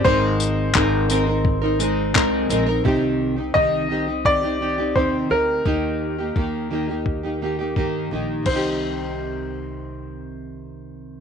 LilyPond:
<<
  \new Staff \with { instrumentName = "Upright piano" } { \time 4/4 \key c \minor \tempo 4 = 86 c''2.~ c''8 r8 | r4 ees''4 d''4 c''8 bes'8~ | bes'2.~ bes'8 r8 | c''1 | }
  \new Staff \with { instrumentName = "Nylon-string guitar" } { \time 4/4 \key c \minor <aes c' ees' bes'>4 <aes c' ees' bes'>8 <aes c' ees' bes'>16 <c' ees' bes'>8 <c' ees' bes'>16 <aes c' ees' bes'>8 <aes c' ees' bes'>8 <aes c' ees' bes'>16 <c' ees' bes'>16 | <c ees c' ees' g'>8. <c' ees' g'>16 <c ees c' ees' g'>8 <ees c' ees' g'>16 <c' ees' g'>16 <ees c' ees' g'>16 <c' ees' g'>16 <ees c' ees' g'>16 <c' ees' g'>16 <c ees c' ees' g'>8 <c' ees' g'>8 | <ees bes ees' g'>8. <bes ees' g'>16 <ees bes ees' g'>8 <ees bes ees' g'>16 <bes ees' g'>8 <bes ees' g'>16 <ees bes ees' g'>16 <bes ees' g'>16 <ees bes ees' g'>8 <ees bes ees' g'>8 | <c ees c' ees' g'>1 | }
  \new Staff \with { instrumentName = "Upright bass" } { \clef bass \time 4/4 \key c \minor aes,,4 aes,,2 c,8 bes,,8 | c,4 c,2 ees,8 d,8 | ees,4 ees,2 g,8 bes,,8 | c,1 | }
  \new DrumStaff \with { instrumentName = "Drums" } \drummode { \time 4/4 bd8 tamb8 <hc bd>8 tamb8 bd8 tamb8 <hc bd>8 tamb8 | bd4 bd4 bd4 bd4 | bd4 bd4 bd4 bd4 | <cymc bd>4 r4 r4 r4 | }
>>